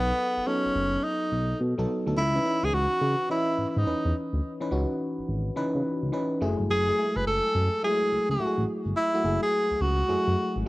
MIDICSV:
0, 0, Header, 1, 4, 480
1, 0, Start_track
1, 0, Key_signature, 4, "minor"
1, 0, Tempo, 566038
1, 1835, Time_signature, 4, 2, 24, 8
1, 9058, End_track
2, 0, Start_track
2, 0, Title_t, "Tenor saxophone"
2, 0, Program_c, 0, 66
2, 0, Note_on_c, 0, 59, 99
2, 402, Note_on_c, 0, 61, 88
2, 415, Note_off_c, 0, 59, 0
2, 881, Note_on_c, 0, 63, 80
2, 893, Note_off_c, 0, 61, 0
2, 1358, Note_off_c, 0, 63, 0
2, 1844, Note_on_c, 0, 64, 104
2, 2240, Note_on_c, 0, 68, 97
2, 2252, Note_off_c, 0, 64, 0
2, 2322, Note_on_c, 0, 66, 110
2, 2334, Note_off_c, 0, 68, 0
2, 2798, Note_off_c, 0, 66, 0
2, 2807, Note_on_c, 0, 64, 92
2, 3126, Note_off_c, 0, 64, 0
2, 3126, Note_on_c, 0, 64, 59
2, 3202, Note_on_c, 0, 63, 80
2, 3215, Note_off_c, 0, 64, 0
2, 3522, Note_off_c, 0, 63, 0
2, 5687, Note_on_c, 0, 68, 108
2, 6076, Note_on_c, 0, 71, 98
2, 6089, Note_off_c, 0, 68, 0
2, 6159, Note_off_c, 0, 71, 0
2, 6165, Note_on_c, 0, 69, 106
2, 6607, Note_off_c, 0, 69, 0
2, 6650, Note_on_c, 0, 68, 101
2, 7009, Note_off_c, 0, 68, 0
2, 7043, Note_on_c, 0, 66, 75
2, 7340, Note_off_c, 0, 66, 0
2, 7603, Note_on_c, 0, 64, 112
2, 7965, Note_off_c, 0, 64, 0
2, 7994, Note_on_c, 0, 68, 106
2, 8321, Note_on_c, 0, 66, 95
2, 8334, Note_off_c, 0, 68, 0
2, 9038, Note_off_c, 0, 66, 0
2, 9058, End_track
3, 0, Start_track
3, 0, Title_t, "FM electric piano"
3, 0, Program_c, 1, 5
3, 0, Control_c, 1, 64, 127
3, 0, Note_on_c, 1, 54, 84
3, 0, Note_on_c, 1, 59, 72
3, 0, Note_on_c, 1, 63, 72
3, 0, Note_on_c, 1, 68, 75
3, 0, Note_on_c, 1, 69, 90
3, 396, Note_off_c, 1, 54, 0
3, 396, Note_on_c, 1, 54, 81
3, 398, Note_off_c, 1, 59, 0
3, 398, Note_on_c, 1, 59, 70
3, 403, Note_off_c, 1, 63, 0
3, 403, Note_on_c, 1, 63, 74
3, 406, Note_off_c, 1, 69, 0
3, 406, Note_on_c, 1, 69, 85
3, 1095, Note_off_c, 1, 54, 0
3, 1097, Note_off_c, 1, 59, 0
3, 1099, Note_off_c, 1, 63, 0
3, 1101, Note_off_c, 1, 69, 0
3, 1508, Note_on_c, 1, 54, 90
3, 1512, Note_on_c, 1, 59, 83
3, 1515, Note_on_c, 1, 63, 77
3, 1518, Note_on_c, 1, 69, 95
3, 1663, Note_off_c, 1, 54, 0
3, 1665, Note_off_c, 1, 59, 0
3, 1666, Note_off_c, 1, 63, 0
3, 1668, Note_off_c, 1, 69, 0
3, 1750, Note_on_c, 1, 54, 83
3, 1753, Note_on_c, 1, 59, 67
3, 1756, Note_on_c, 1, 63, 65
3, 1759, Note_on_c, 1, 69, 85
3, 1812, Note_off_c, 1, 54, 0
3, 1813, Note_off_c, 1, 59, 0
3, 1815, Note_off_c, 1, 63, 0
3, 1816, Note_off_c, 1, 69, 0
3, 1845, Control_c, 1, 64, 0
3, 1849, Note_off_c, 1, 68, 0
3, 1990, Note_on_c, 1, 52, 71
3, 1992, Note_on_c, 1, 61, 68
3, 1996, Note_on_c, 1, 63, 70
3, 1999, Note_on_c, 1, 71, 79
3, 2013, Control_c, 1, 64, 127
3, 2052, Note_off_c, 1, 52, 0
3, 2053, Note_off_c, 1, 61, 0
3, 2055, Note_off_c, 1, 63, 0
3, 2056, Note_off_c, 1, 71, 0
3, 2076, Note_on_c, 1, 52, 66
3, 2079, Note_on_c, 1, 61, 68
3, 2083, Note_on_c, 1, 63, 62
3, 2085, Note_on_c, 1, 71, 76
3, 2605, Note_off_c, 1, 52, 0
3, 2607, Note_off_c, 1, 61, 0
3, 2609, Note_off_c, 1, 63, 0
3, 2610, Note_off_c, 1, 71, 0
3, 2793, Note_on_c, 1, 52, 81
3, 2797, Note_on_c, 1, 61, 73
3, 2800, Note_on_c, 1, 75, 66
3, 2804, Note_on_c, 1, 71, 89
3, 3169, Note_off_c, 1, 52, 0
3, 3172, Note_off_c, 1, 61, 0
3, 3173, Note_off_c, 1, 75, 0
3, 3175, Note_off_c, 1, 71, 0
3, 3274, Note_on_c, 1, 52, 71
3, 3277, Note_on_c, 1, 61, 71
3, 3281, Note_on_c, 1, 63, 64
3, 3285, Note_on_c, 1, 71, 78
3, 3720, Note_off_c, 1, 52, 0
3, 3722, Note_off_c, 1, 61, 0
3, 3724, Note_off_c, 1, 63, 0
3, 3726, Note_off_c, 1, 71, 0
3, 3905, Note_on_c, 1, 52, 87
3, 3908, Note_on_c, 1, 61, 79
3, 3911, Note_on_c, 1, 63, 82
3, 3916, Note_on_c, 1, 71, 95
3, 3969, Note_off_c, 1, 52, 0
3, 3971, Note_off_c, 1, 61, 0
3, 3972, Note_off_c, 1, 63, 0
3, 3975, Note_off_c, 1, 71, 0
3, 3993, Note_on_c, 1, 52, 80
3, 3996, Note_on_c, 1, 61, 78
3, 4000, Note_on_c, 1, 63, 77
3, 4003, Note_on_c, 1, 66, 92
3, 4524, Note_off_c, 1, 52, 0
3, 4526, Note_off_c, 1, 61, 0
3, 4527, Note_off_c, 1, 63, 0
3, 4529, Note_off_c, 1, 66, 0
3, 4715, Note_on_c, 1, 52, 96
3, 4718, Note_on_c, 1, 61, 86
3, 4720, Note_on_c, 1, 63, 89
3, 4724, Note_on_c, 1, 71, 106
3, 5090, Note_off_c, 1, 52, 0
3, 5092, Note_off_c, 1, 61, 0
3, 5093, Note_off_c, 1, 63, 0
3, 5095, Note_off_c, 1, 71, 0
3, 5192, Note_on_c, 1, 52, 89
3, 5196, Note_on_c, 1, 61, 83
3, 5197, Note_on_c, 1, 63, 79
3, 5203, Note_on_c, 1, 71, 99
3, 5433, Note_on_c, 1, 54, 88
3, 5434, Note_off_c, 1, 52, 0
3, 5436, Note_off_c, 1, 61, 0
3, 5436, Note_off_c, 1, 63, 0
3, 5436, Note_on_c, 1, 57, 82
3, 5439, Note_off_c, 1, 71, 0
3, 5440, Note_on_c, 1, 64, 88
3, 5444, Note_on_c, 1, 68, 102
3, 5447, Control_c, 1, 64, 0
3, 5570, Control_c, 1, 64, 127
3, 5735, Note_off_c, 1, 54, 0
3, 5737, Note_off_c, 1, 57, 0
3, 5739, Note_off_c, 1, 64, 0
3, 5741, Note_off_c, 1, 68, 0
3, 5828, Note_on_c, 1, 54, 74
3, 5833, Note_on_c, 1, 57, 72
3, 5836, Note_on_c, 1, 64, 67
3, 5840, Note_on_c, 1, 68, 83
3, 5891, Note_off_c, 1, 54, 0
3, 5893, Note_off_c, 1, 57, 0
3, 5895, Note_off_c, 1, 64, 0
3, 5897, Note_off_c, 1, 68, 0
3, 5915, Note_on_c, 1, 54, 72
3, 5916, Note_on_c, 1, 56, 55
3, 5920, Note_on_c, 1, 64, 64
3, 5924, Note_on_c, 1, 80, 80
3, 5974, Note_on_c, 1, 57, 64
3, 5986, Note_off_c, 1, 56, 0
3, 6445, Note_off_c, 1, 54, 0
3, 6447, Note_off_c, 1, 64, 0
3, 6449, Note_off_c, 1, 80, 0
3, 6474, Note_off_c, 1, 57, 0
3, 6637, Note_on_c, 1, 54, 82
3, 6639, Note_on_c, 1, 56, 61
3, 6642, Note_on_c, 1, 64, 75
3, 6646, Note_on_c, 1, 68, 83
3, 6693, Note_on_c, 1, 57, 74
3, 6708, Note_off_c, 1, 56, 0
3, 7012, Note_off_c, 1, 54, 0
3, 7014, Note_off_c, 1, 64, 0
3, 7016, Note_off_c, 1, 68, 0
3, 7040, Note_off_c, 1, 57, 0
3, 7114, Note_on_c, 1, 54, 74
3, 7119, Note_on_c, 1, 57, 70
3, 7122, Note_on_c, 1, 64, 73
3, 7125, Note_on_c, 1, 66, 65
3, 7181, Note_on_c, 1, 68, 86
3, 7190, Note_off_c, 1, 66, 0
3, 7560, Note_off_c, 1, 54, 0
3, 7563, Note_off_c, 1, 57, 0
3, 7564, Note_off_c, 1, 64, 0
3, 7594, Note_off_c, 1, 68, 0
3, 7749, Note_on_c, 1, 54, 83
3, 7752, Note_on_c, 1, 57, 71
3, 7755, Note_on_c, 1, 64, 69
3, 7758, Note_on_c, 1, 66, 90
3, 7811, Note_off_c, 1, 54, 0
3, 7813, Note_off_c, 1, 57, 0
3, 7814, Note_off_c, 1, 64, 0
3, 7816, Note_off_c, 1, 66, 0
3, 7835, Note_on_c, 1, 54, 69
3, 7840, Note_on_c, 1, 57, 64
3, 7843, Note_on_c, 1, 64, 67
3, 7846, Note_on_c, 1, 68, 80
3, 8365, Note_off_c, 1, 54, 0
3, 8367, Note_off_c, 1, 57, 0
3, 8369, Note_off_c, 1, 64, 0
3, 8370, Note_off_c, 1, 68, 0
3, 8552, Note_on_c, 1, 54, 86
3, 8556, Note_on_c, 1, 57, 76
3, 8558, Note_on_c, 1, 64, 67
3, 8561, Note_on_c, 1, 68, 90
3, 8929, Note_off_c, 1, 54, 0
3, 8931, Note_off_c, 1, 57, 0
3, 8932, Note_off_c, 1, 64, 0
3, 8933, Note_off_c, 1, 68, 0
3, 9058, End_track
4, 0, Start_track
4, 0, Title_t, "Analog synth bass"
4, 0, Program_c, 2, 38
4, 0, Note_on_c, 2, 35, 113
4, 106, Note_off_c, 2, 35, 0
4, 312, Note_on_c, 2, 30, 49
4, 346, Note_off_c, 2, 30, 0
4, 553, Note_on_c, 2, 30, 49
4, 587, Note_off_c, 2, 30, 0
4, 640, Note_on_c, 2, 30, 98
4, 826, Note_off_c, 2, 30, 0
4, 1119, Note_on_c, 2, 35, 93
4, 1305, Note_off_c, 2, 35, 0
4, 1360, Note_on_c, 2, 47, 99
4, 1478, Note_off_c, 2, 47, 0
4, 1513, Note_on_c, 2, 35, 93
4, 1579, Note_off_c, 2, 35, 0
4, 1753, Note_on_c, 2, 38, 88
4, 1819, Note_off_c, 2, 38, 0
4, 1840, Note_on_c, 2, 37, 111
4, 2026, Note_off_c, 2, 37, 0
4, 2232, Note_on_c, 2, 37, 78
4, 2298, Note_off_c, 2, 37, 0
4, 2317, Note_on_c, 2, 37, 101
4, 2436, Note_off_c, 2, 37, 0
4, 2554, Note_on_c, 2, 49, 108
4, 2675, Note_off_c, 2, 49, 0
4, 3037, Note_on_c, 2, 44, 50
4, 3098, Note_off_c, 2, 44, 0
4, 3192, Note_on_c, 2, 44, 90
4, 3258, Note_off_c, 2, 44, 0
4, 3281, Note_on_c, 2, 40, 52
4, 3341, Note_off_c, 2, 40, 0
4, 3435, Note_on_c, 2, 40, 94
4, 3500, Note_off_c, 2, 40, 0
4, 3672, Note_on_c, 2, 38, 86
4, 3738, Note_off_c, 2, 38, 0
4, 3998, Note_on_c, 2, 37, 104
4, 4117, Note_off_c, 2, 37, 0
4, 4394, Note_on_c, 2, 32, 52
4, 4427, Note_off_c, 2, 32, 0
4, 4479, Note_on_c, 2, 32, 92
4, 4665, Note_off_c, 2, 32, 0
4, 4719, Note_on_c, 2, 49, 53
4, 4780, Note_off_c, 2, 49, 0
4, 4874, Note_on_c, 2, 49, 98
4, 4940, Note_off_c, 2, 49, 0
4, 5112, Note_on_c, 2, 37, 92
4, 5178, Note_off_c, 2, 37, 0
4, 5438, Note_on_c, 2, 30, 85
4, 5557, Note_off_c, 2, 30, 0
4, 5592, Note_on_c, 2, 31, 90
4, 5659, Note_off_c, 2, 31, 0
4, 5679, Note_on_c, 2, 30, 101
4, 5865, Note_off_c, 2, 30, 0
4, 6073, Note_on_c, 2, 30, 91
4, 6139, Note_off_c, 2, 30, 0
4, 6162, Note_on_c, 2, 30, 99
4, 6279, Note_off_c, 2, 30, 0
4, 6401, Note_on_c, 2, 42, 99
4, 6518, Note_off_c, 2, 42, 0
4, 6881, Note_on_c, 2, 37, 50
4, 6941, Note_off_c, 2, 37, 0
4, 7031, Note_on_c, 2, 37, 97
4, 7098, Note_off_c, 2, 37, 0
4, 7120, Note_on_c, 2, 33, 47
4, 7180, Note_off_c, 2, 33, 0
4, 7273, Note_on_c, 2, 33, 98
4, 7339, Note_off_c, 2, 33, 0
4, 7510, Note_on_c, 2, 31, 89
4, 7577, Note_off_c, 2, 31, 0
4, 7837, Note_on_c, 2, 30, 102
4, 7956, Note_off_c, 2, 30, 0
4, 8232, Note_on_c, 2, 37, 53
4, 8266, Note_off_c, 2, 37, 0
4, 8317, Note_on_c, 2, 37, 102
4, 8504, Note_off_c, 2, 37, 0
4, 8561, Note_on_c, 2, 42, 53
4, 8621, Note_off_c, 2, 42, 0
4, 8713, Note_on_c, 2, 42, 102
4, 8779, Note_off_c, 2, 42, 0
4, 8955, Note_on_c, 2, 32, 97
4, 9020, Note_off_c, 2, 32, 0
4, 9058, End_track
0, 0, End_of_file